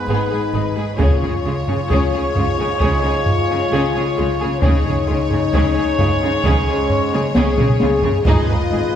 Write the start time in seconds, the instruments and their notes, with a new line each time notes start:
Already playing: trombone section G#2 G#3, trumpet B4, violin section B4
0.08 double bass section G#1, cello section G#2, violin section B3, french horn section D#4, viola section G#4
0.30 cello section G#2, viola section G#4, violin section G#4
0.53 double bass section G#1, cello section G#2, violin section D#4, viola section G#4
0.75 cello section G#2, viola section G#4, violin section G#4
0.97 double bass section C#2, trombone section G#2 G#3, cello section C#3, french horn section F4, viola section G#4, trumpet C#5, violin section C#5, taiko
1.01 violin section C#4
1.21 cello section C#3, viola section G#4, violin section G#4, taiko low
1.45 double bass section C#2, cello section C#3, violin section F4, viola section G#4
1.68 cello section C#3, viola section G#4, violin section G#4, taiko low
1.89 double bass section C#2, cello section C#3, violin section C#4, viola section G#4, taiko
2.13 cello section C#3, viola section G#4, violin section G#4
2.35 double bass section C#2, cello section C#3, violin section F4, viola section G#4, taiko low
2.59 cello section C#3, violin section G#4, viola section G#4
2.79 double bass section C#2, cello section C#3, violin section C#4, french horn section F4, viola section G#4, taiko
3.03 cello section C#3, viola section G#4, violin section G#4
3.26 taiko low
3.50 cello section C#3, viola section G#4, violin section G#4
3.72 double bass section C#2, cello section C#3, violin section C#4, viola section G#4
3.94 cello section C#3, viola section G#4, violin section G#4
4.17 double bass section C#2, cello section C#3, violin section F4, viola section G#4
4.40 cello section C#3, viola section G#4, violin section G#4
4.62 double bass section C#2, trombone section G#2 G#3, violin section C#4 C#5, french horn section D#4, viola section G#4, trumpet C#5, taiko
4.66 cello section C#3
4.84 cello section C#3, viola section G#4, violin section G#4, taiko low
5.06 double bass section C#2, violin section F4, viola section G#4
5.11 cello section C#3
5.30 cello section C#3, violin section G#4, viola section G#4, taiko low
5.53 double bass section C#2, cello section C#3, violin section C#4, viola section G#4, taiko
5.75 cello section C#3, viola section G#4, violin section G#4
5.99 double bass section C#2, cello section C#3, violin section F4, viola section G#4, taiko low
6.21 cello section C#3, viola section G#4, violin section G#4
6.44 double bass section C#2, cello section C#3, violin section C#4, french horn section C#4, viola section G#4, taiko
6.67 cello section C#3, viola section G#4, violin section G#4
6.90 taiko low
7.13 cello section C#3, violin section G#4, viola section G#4
7.34 double bass section C#2, cello section C#3, violin section C#4, french horn section G#4, viola section G#4, taiko high
7.58 cello section C#3, violin section G#4, viola section G#4, taiko low-mid
7.80 double bass section C#2, cello section C#3, violin section F4, viola section G#4, taiko high
8.02 cello section C#3, violin section G#4, viola section G#4, taiko low
8.25 double bass section G#1, trombone section G#2 G#3, cello section G#2, violin section D#4 D#5, french horn section F4, viola section G#4, trumpet B4, taiko
8.48 cello section G#2, viola section G#4, violin section B4, taiko low
8.72 double bass section G#1, cello section G#2, violin section G#4, viola section G#4